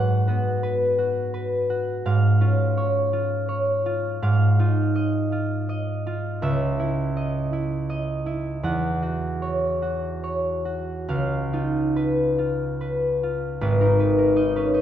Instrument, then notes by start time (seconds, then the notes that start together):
harp
Already playing: G#2 B3 A#4 B4 F#5 B5
0.28 B3 F#4
0.63 B4
0.98 F#4
1.34 B4
1.70 F#4
2.06 G#2 F5
2.41 C#4 F4
2.77 C#5
3.13 F4
3.49 C#5
3.86 F4
4.22 G#2 F5
4.59 D#4 F4
4.95 D#5
5.32 F4
5.69 D#5
6.07 F4
6.42 C#2 E5
6.79 E4
7.16 D#5
7.53 E4
7.90 D#5
8.26 E4
8.63 E2 F#5
9.02 F#4
9.42 C#5
9.82 F#4
10.24 C#5
10.65 F#4
11.09 C#2 F5
11.53 D#4 F4
11.96 B4
12.39 F4
12.81 B4
13.23 F4
13.61 G#1 B4
13.81 D#4 A#4
14.00 B4
14.18 A#4
14.36 D#4 D#5
14.56 C#4 B4
14.74 D#4 D#5